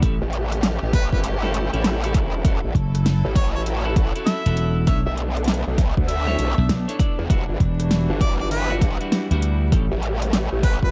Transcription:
0.02 slap bass A1, string section A3 C#4 G4, clean electric guitar C#4 E4 G4 A4, kick, closed hi-hat
0.22 wobble bass A1
0.33 closed hi-hat
0.52 cross-stick, closed hi-hat
0.63 snare, closed hi-hat
0.83 wobble bass A1
0.93 harmonica B4, kick, snare, closed hi-hat
1.12 wobble bass G1, harmonica B4, kick
1.24 closed hi-hat
1.43 clean electric guitar C#4 E4 G4 A4, snare
1.54 closed hi-hat
1.73 wobble bass A1, clean electric guitar C#4 E4 G4 A4, closed hi-hat
1.84 snare, closed hi-hat
2.04 clean electric guitar C#4 E4 G4 A4, closed hi-hat
2.14 kick, closed hi-hat
2.45 wobble bass F#1, string section F#3 E4 A4, clean electric guitar C#4 E4 F#4 A4, kick, closed hi-hat
2.64 wobble bass A1
2.75 slap bass F#1, kick, closed hi-hat
2.95 cross-stick, closed hi-hat
3.06 snare, closed hi-hat
3.25 wobble bass A1
3.35 harmonica C#5, kick, closed hi-hat
3.55 harmonica C#5
3.66 closed hi-hat
3.85 clean electric guitar C#4 E4 F#4 A4
3.96 kick, closed hi-hat
4.16 clean electric guitar C#4 E4 F#4 A4, closed hi-hat
4.26 harmonica E5, snare, closed hi-hat
4.46 slap bass E1, clean electric guitar C#4 E4 F#4 A4, closed hi-hat
4.57 closed hi-hat
4.87 slap bass B1, string section A3 B3 D4, clean electric guitar D4 E4 A4 C#5, harmonica E5, kick, closed hi-hat
5.06 wobble bass B1, harmonica E5
5.17 closed hi-hat
5.37 cross-stick, closed hi-hat
5.44 snare, closed hi-hat
5.48 closed hi-hat
5.54 closed hi-hat
5.67 wobble bass B1
5.78 kick, snare, closed hi-hat
5.97 wobble bass D2, kick
6.08 harmonica E5, closed hi-hat
6.27 clean electric guitar D4 E4 A4 C#5, snare
6.39 wobble bass B1, closed hi-hat
6.58 slap bass B1
6.69 slap bass B1, snare, closed hi-hat
6.88 clean electric guitar D4 E4 A4 C#5, closed hi-hat
6.99 clean electric guitar D4 E4 A4 D5, kick, closed hi-hat
7.19 wobble bass E2
7.29 wobble bass E1, string section E3 G3 F#4, clean electric guitar G3 D4 E4 F#4, kick, closed hi-hat
7.49 wobble bass G1
7.60 slap bass E1, kick, closed hi-hat
7.80 cross-stick, closed hi-hat
7.91 snare, closed hi-hat
8.10 wobble bass G1
8.21 harmonica D5, kick, closed hi-hat
8.40 harmonica D5
8.51 harmonica B4, closed hi-hat
8.70 clean electric guitar G3 D4 E4 F#4
8.81 kick, closed hi-hat
9.00 clean electric guitar G3 D4 E4 F#4, closed hi-hat
9.12 snare, closed hi-hat
9.31 slap bass D2, clean electric guitar G3 D4 E4 F#4, closed hi-hat
9.42 closed hi-hat
9.72 slap bass A1, string section A3 C#4, clean electric guitar C#4 E4 G4 A4, kick, closed hi-hat
9.92 wobble bass A1
10.03 closed hi-hat
10.22 cross-stick, closed hi-hat
10.33 snare, closed hi-hat
10.52 wobble bass A1
10.63 harmonica B4, kick, snare, closed hi-hat
10.82 wobble bass G1, harmonica B4, kick

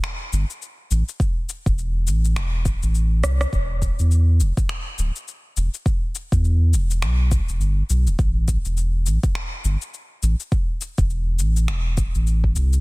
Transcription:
0.04 finger snap, cabasa
0.32 sub bass G1, cabasa
0.50 cabasa
0.62 cabasa
0.91 sub bass A1, cabasa
1.09 cabasa
1.20 kick, cabasa
1.49 cabasa
1.66 sub bass E1, kick, cabasa
1.78 cabasa
2.07 sub bass A1, cabasa
2.25 cabasa
2.36 sub bass E1, finger snap, cabasa
2.65 kick, cabasa
2.83 sub bass A1, cabasa
2.95 cabasa
3.24 sub bass C2, cross-stick, cabasa
3.41 cross-stick, cabasa
3.53 sub bass E1, kick, cabasa
3.82 kick, cabasa
3.99 sub bass E2, cabasa
4.11 cabasa
4.40 sub bass E1, cabasa
4.57 kick, cabasa
4.69 finger snap, cabasa
4.98 sub bass D1, cabasa
5.16 cabasa
5.28 cabasa
5.57 sub bass E1, cabasa
5.74 cabasa
5.86 kick, cabasa
6.15 cabasa
6.32 sub bass E2, kick, cabasa
6.45 cabasa
6.73 sub bass E1, cabasa
6.91 cabasa
7.02 sub bass B1, finger snap, cabasa
7.32 kick, cabasa
7.49 sub bass E1, cabasa
7.60 sub bass G1, cabasa
7.90 sub bass B1, cabasa
8.07 sub bass D1, cabasa
8.19 sub bass A1, kick, cabasa
8.48 kick, cabasa
8.65 sub bass E1, cabasa
8.77 cabasa
9.06 sub bass A1, cabasa
9.23 kick, cabasa
9.35 finger snap, cabasa
9.64 sub bass G1, cabasa
9.82 cabasa
9.94 cabasa
10.23 sub bass A1, cabasa
10.40 cabasa
10.52 kick, cabasa
10.81 cabasa
10.98 sub bass E1, kick, cabasa
11.10 cabasa
11.39 sub bass A1, cabasa
11.57 cabasa
11.68 sub bass E1, finger snap, cabasa
11.98 kick, cabasa
12.15 sub bass A1, cabasa
12.27 cabasa
12.44 kick
12.56 sub bass C2, cabasa
12.73 cabasa

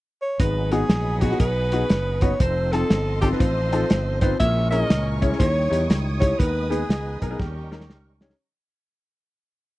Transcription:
0.22 alto saxophone C#5
0.39 fingered electric bass G#1, upright piano G#2, tonewheel organ F#3 B3 D#4 G#4, alto saxophone B4, string section D#5 F#5 G#5 B5, kick, closed hi-hat
0.72 upright piano B3 D#4 F#4 G#4, alto saxophone G#4, snare, closed hi-hat
0.89 fingered electric bass A#1, snare, closed hi-hat
1.21 upright piano B3 D#4 F#4 G#4, alto saxophone F#4, kick, closed hi-hat
1.31 upright piano B3 D#4 F#4 G#4, snare
1.40 fingered electric bass B1, alto saxophone B4, kick, closed hi-hat
1.72 upright piano B3 D#4 F#4 G#4, closed hi-hat
1.90 fingered electric bass F#1, snare, closed hi-hat
2.21 upright piano B3 D#4 F#4 B4, alto saxophone C#5, kick, closed hi-hat
2.40 fingered electric bass F1, tonewheel organ F3 C4 D#4 A4, alto saxophone C5, string section D#5 F5 A5 C6, kick, closed hi-hat
2.72 upright piano C4 D#4 F4 A4, alto saxophone A4, snare, closed hi-hat
2.90 fingered electric bass G1, snare, closed hi-hat
3.22 upright piano C4 D#4 F4 A4, alto saxophone G4, kick, closed hi-hat
3.32 upright piano C4 D#4 F4 B4, snare
3.40 fingered electric bass A1, alto saxophone C5, kick, closed hi-hat
3.72 upright piano C4 D#4 F4 A4, closed hi-hat
3.90 fingered electric bass G1, snare, closed hi-hat
4.21 upright piano C4 D#4 F4 B4, alto saxophone C5, kick, closed hi-hat
4.39 fingered electric bass A#1, upright piano A#2, tonewheel organ G#3 C#4 E4 A4, string section C#5 G#5 A#5 C#6, alto saxophone E5, kick, closed hi-hat
4.46 tonewheel organ A#4
4.71 upright piano C#4 E4 G#4 A#4, alto saxophone D#5, closed hi-hat
4.90 fingered electric bass C#2, snare, closed hi-hat
5.21 upright piano C#4 E4 G#4 C#5, kick, closed hi-hat
5.30 upright piano C#4 E4 G#4 C#5, snare
5.39 fingered electric bass D#2, upright piano D#3, tonewheel organ G3 D#4 E4 C#5, alto saxophone C#5, string section G5 D#6, kick, closed hi-hat
5.70 fingered electric bass E2, upright piano D#4 E4 G4 C#5, closed hi-hat
5.90 fingered electric bass C#2, snare, closed hi-hat
6.20 upright piano D#4 E4 G4 C#5, alto saxophone C#5, kick, closed hi-hat
6.38 fingered electric bass D#2, upright piano D#3, tonewheel organ G#3 B3 D#4 A#4, alto saxophone B4, string section D#5 G#5 B5, kick, closed hi-hat
6.45 tonewheel organ B4
6.70 upright piano B3 D#4 G#4 B4, alto saxophone G#4, closed hi-hat
6.89 fingered electric bass C#2, snare, closed hi-hat
7.21 fingered electric bass B1, upright piano B3 D#4 G#4 A#4, alto saxophone G#4, kick, closed hi-hat
7.30 upright piano B3 D#4 G#4 A#4
7.39 fingered electric bass D#2, upright piano D#3, tonewheel organ G3 C#4 D#4 A#4, alto saxophone G4, string section G5 A#5 C#6, kick, snare
7.71 upright piano C#4 D#4 G4 A#4, snare
7.81 snare
7.90 fingered electric bass C#2, snare
8.21 upright piano C#4 D#4 G4 C#5, snare
8.30 snare

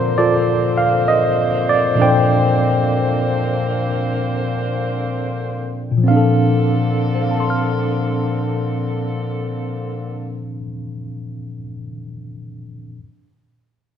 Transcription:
Already playing: tine electric piano A#2 D3 F3 C4 F4 A4 A#4 C5 D5, saxophone section D3 A#3 C4 C5
0.18 tine electric piano F4 A4 D5
0.77 tine electric piano F5
1.08 tine electric piano D#5
1.69 tine electric piano D5
1.95 tine electric piano A#2 F3 C4 D4
2.00 tine electric piano A4 C5 D5 G5
5.91 tine electric piano A#2
5.98 tine electric piano F3
6.03 saxophone section D3 A#3 C4 A4, tine electric piano C4
6.08 tine electric piano D4 F5
6.17 tine electric piano A4
7.15 tine electric piano C5
7.22 tine electric piano F5
7.31 tine electric piano A5
7.40 tine electric piano C6
7.50 tine electric piano F6

